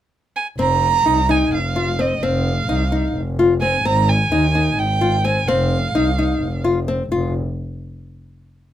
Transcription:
0.36 G#5
0.58 F1 C4 A#5
1.06 C2 D#4
1.29 D#4 G#5
1.52 F1 F5
1.76 F4
1.99 C4 D#5
2.22 F1 C4 F5
2.69 C2 D#4
2.92 D#4
3.15 F1
3.39 F4
3.61 C4 G#5
3.85 G#1 C4 A#5
4.09 G#5
4.31 D#2 D#4
4.55 D#4
4.77 G#1 G5
5.01 F4
5.24 C4 G#5
5.48 F1 C4 F5
5.95 C2 D#4
6.18 D#4
6.42 F1
6.64 F4
6.88 C4
7.12 F1 F4

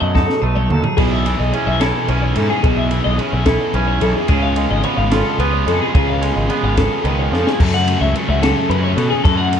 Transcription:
Already playing: B2 F#3 A3
0.00 F#2 D#5
0.15 D#4 A4, kick, snare
0.30 snare
0.42 B1 A3 B4
0.55 C#5, mid tom
0.69 D#2 F#3 A4, mid tom
0.83 G#4, floor tom
0.97 B1 B2 E3 B3 E4 G#4, kick, crash
1.11 E5
1.25 E3 B3 E4 G#4, ride
1.39 B1 D#5
1.53 E3 B3 C#4 E4 G#4 C#5, ride
1.67 B1 E5
1.80 B3 E4 G#4 A4, snare, ride
2.08 B1 E3 B3 C#4 E4 G#4 B4, ride
2.22 C#5
2.35 G#2 E3 B3 E4 G#4 A4, ride
2.50 G#4
2.63 B1 B2 E3 B3 E4 G#4, kick, ride
2.77 E5
2.90 E3 B3 E4 G#4, ride
3.04 B1 D#5
3.18 E3 B3 C#4 E4 G#4 C#5, ride
3.33 B1 E5
3.46 B3 E4 G#4 A4, kick, snare, ride
3.73 B1 E3 B3 C#4 E4 G#4 B4, ride
3.88 C#5
4.01 B1 E3 B3 E4 G#4 A4, ride
4.15 G#4
4.28 C#2 C#3 G#3 B3 F4 G#4, kick, ride
4.42 F5
4.56 G#3 B3 F4 G#4, ride
4.71 G#1 D#5
4.84 G#3 B3 F4 G#4 C#5, ride
4.97 G#1 F5
5.11 B3 F4 G#4 A4, snare, ride
5.38 C#2 G#3 B3 F4 G#4 B4, ride
5.53 C#5
5.66 F2 G#3 B3 F4 G#4 A4, ride
5.81 G#4
5.94 C#2 C#3 G#3 B3 F4 G#4, kick, ride
6.09 F5
6.22 G#3 B3 F4 G#4, ride
6.36 G#1 D#5
6.49 G#3 B3 F4 G#4 C#5, ride
6.63 G#1 F5
6.77 C#3 B3 F4 G#4 A4, kick, snare, ride
7.04 C#2 D#3 G#3 B3 F4 G#4 B4, ride
7.19 C#5
7.31 F2 F3 B3 F4 G#4 A4, snare
7.47 G#4, snare
7.59 F#2 C#3 F#3 A3 C#4 A4, kick, crash
7.74 F#5
7.87 F#3 A3 C#4, ride
8.01 C#2 E5
8.14 C#3 F#3 A3 C#4 C#5, ride
8.28 C#2 E5
8.42 F#3 A3 C#4 A4, snare, ride
8.69 F#2 C#3 F#3 A3 C#4 B4, ride
8.84 C#5
8.97 B2 F#3 A3 C#4 A4, ride
9.10 G#4
9.24 F#2 C#3 F#3 A3 C#4 A4, kick, ride
9.37 F#5
9.52 F#3 A3 C#4, ride

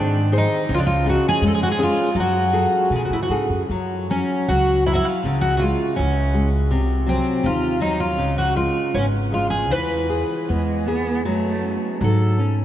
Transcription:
Already playing: G#2 D#3 C4 D4 G#4 C5
0.32 D#4 G#4 C5
0.38 D#4
0.69 C#2 C#3
0.75 F4
0.79 D4
0.87 F4
1.05 C#4 F4 F#4 G#4
1.29 G#4
1.41 F2 G#3
1.47 A4
1.54 G#4
1.63 F#4
1.71 G#4
1.79 C#4 F4 G#4
1.83 F4
2.15 F#2 F#3
2.20 F#4
2.53 F#4 G#4 A4
2.90 B2 C#3
2.96 G#4
3.05 F#4
3.10 A2 E4
3.23 F#4
3.30 G#2 F#4 G#4 A4
3.50 F#2
3.69 F#2 F#3
4.10 F#3 C#4
4.48 C#2 F#3 F#4
4.86 F#3 E4
4.93 E4 F#4
5.05 F4
5.24 C#2 C#3
5.41 F#4
5.57 F4 F#4
5.62 G#3
5.96 C#2 C#3 C#4
6.34 G#3
6.71 C2 C3
7.06 F#3 C4
7.43 D#2 C3 F4
7.80 F#3 D#4
8.00 F4
8.18 C#2 C#3
8.38 F#4
8.55 G#3 F4
8.94 G#1 B3 C#4
9.32 G#3 F4
9.50 G#4
9.70 E2 E3 B4
10.10 G#4
10.48 E2 G#3 B3
10.86 B3 G#4
11.25 F#2 F#3 A3
11.62 C#4
12.01 G#2 F#3 A4
12.39 C#4

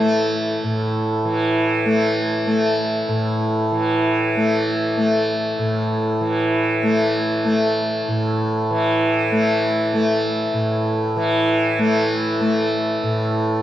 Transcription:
Already playing: A2 E3
0.00 A3
0.64 A2
1.25 E3
1.85 A3
2.46 A3
3.08 A2
3.72 E3
4.36 A3
4.97 A3
5.59 A2
6.21 E3
6.83 A3
7.45 A3
8.08 A2
8.70 E3
9.32 A3
9.93 A3
10.54 A2
11.16 E3
11.79 A3
12.41 A3
13.03 A2

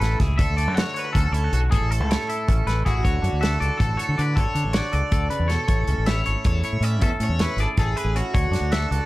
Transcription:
Already playing: A2 A3 C#4 A4
0.00 A1 E4 B4, snare, closed hi-hat
0.19 C#2 E4 G#4, kick, snare, closed hi-hat
0.38 D2 D3 E5, kick, closed hi-hat
0.42 A4
0.50 D2
0.57 A3 D5, closed hi-hat
0.68 F#2
0.74 F#4 F#5, snare, closed hi-hat
0.79 C#5
0.94 F#4 C#5, closed hi-hat
0.99 B4
1.05 B4
1.13 D2 C#4 A4, kick, closed hi-hat
1.18 A4
1.32 D2 E4 C#5, closed hi-hat
1.44 F#4
1.53 B1 F#4 A4, closed hi-hat
1.71 A1 A2 G#4, kick, closed hi-hat
1.75 A4
1.81 A1
1.90 A3 A4, closed hi-hat
2.00 C#2
2.09 E4 C#5, snare, closed hi-hat
2.28 E4 E5, closed hi-hat
2.48 A1 C#4, kick, closed hi-hat
2.66 A1 E4 B4, snare, closed hi-hat
2.85 A1 E4 F#4 G#4, kick, closed hi-hat
3.03 D2 D3 C#5, kick, closed hi-hat
3.22 F#2 D4, closed hi-hat
3.33 D2
3.41 F#4 A4 E5, snare, closed hi-hat
3.60 C#2 F#4 D5, closed hi-hat
3.77 A1 A2 A4, kick, closed hi-hat
3.97 F#4 A4 C#5, closed hi-hat
4.09 D3
4.17 D3 D4 B4 D5, closed hi-hat
4.35 A1 D3 A4 C#5, kick, closed hi-hat
4.55 D3 D4, closed hi-hat
4.64 A1
4.73 F#4 C#5 D5, snare, closed hi-hat
4.92 C#2 A4 D5, closed hi-hat
5.11 D2 D3 A4, kick, closed hi-hat
5.30 C#3 B4, closed hi-hat
5.39 E2
5.48 B2 A4 C#5, snare, closed hi-hat
5.68 A1 A2 C#5, kick, closed hi-hat
5.87 C#2 C#4, closed hi-hat
5.98 A1
6.06 E4 C#5 E5, snare, closed hi-hat
6.26 G#1 A4 C#5, closed hi-hat
6.44 E2 A2 A4 C#5, kick, closed hi-hat
6.64 E4 C#5, closed hi-hat
6.73 A2
6.81 A2 C#4 D5 E5, closed hi-hat
7.01 E2 A2 A4 E5, kick, closed hi-hat
7.20 A2 C#4, closed hi-hat
7.24 C#5
7.29 E2
7.39 E4 B4 C#5, snare, closed hi-hat
7.57 G#1 G#4 D5, closed hi-hat
7.62 A4
7.77 A1 A2 A4, kick, closed hi-hat
7.81 G#4
7.96 E4 B4, closed hi-hat
8.05 A1
8.15 C#4 F#4 C#5, closed hi-hat
8.34 D2 D3 C#5, kick, closed hi-hat
8.51 F#2 D4, snare, closed hi-hat
8.61 D2
8.71 F#4 A4 E5, snare, closed hi-hat
8.91 C#2 F#4 D5, closed hi-hat

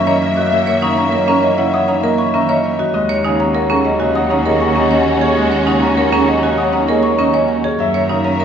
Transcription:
Already playing: F#2 C#3 D#3 E3 F#3 A#3 C#4 E5 A#5
0.06 C#4 C#5 D#5 A#5
0.22 D#3
0.37 F#4 D#5
0.51 F#3 E5
0.67 D#3 C#5
0.82 C#3 D#4 A#5 C#6
0.97 C#4 A#5
1.12 F#3 A#4 D#5 E5
1.28 E3 C#4 A#4 A#5
1.43 C#4 D#5
1.58 C#3 E4 E5 F#5
1.73 E3 F#5 D#6
1.88 C#4 D#4 A#5
2.03 A#3 A#4 D#5
2.18 E3 C#6
2.34 D#3 C#4 E5 A#5
2.49 C#4 C#5 D#5 A#5
2.64 D#3
2.79 F#4 D#5
2.93 D#2 G#3 C#4 F#4 D#5
3.09 D#3 C#5
3.25 C#3 D#4 G#5
3.39 C#4 A#5
3.55 A#4 C#5 F#5
3.70 F#3 C#4 G#4 A#5
3.85 C#4 D#5
4.00 C#3 F#4 D#5 G#5
4.15 F#3 F#5 D#6
4.30 C#4 D#4 A#5
4.46 A#3 G#4 A#4 D#5
4.61 F#3 C#6
4.75 D#3 C#4 D#5 A#5
4.91 C#4 C#5 D#5 G#5
5.06 D#3
5.21 G#4 C#5
5.37 G#3 D#5
5.52 D#3 C#5
5.66 C#3 D#4 G#5
5.82 C#4 A#5
5.97 A#4 C#5 F#5
6.12 F#3 C#4 G#4 A#5
6.28 C#4 D#5
6.42 C#3 F#4 D#5 G#5
6.58 F#3 F#5 D#6
6.73 C#4 D#4 A#5
6.88 A#3 G#4 A#4 D#5
7.03 F#3 C#6
7.18 D#3 C#4 D#5 A#5
7.34 C#4 C#5 D#5 G#5
7.48 D#3
7.64 G#4 C#5
7.79 F#2 F#3 A#4 E5
7.94 D#3 C#5
8.09 C#3 D#4 A#5
8.24 C#4 A#5
8.40 A#4 D#5 E5

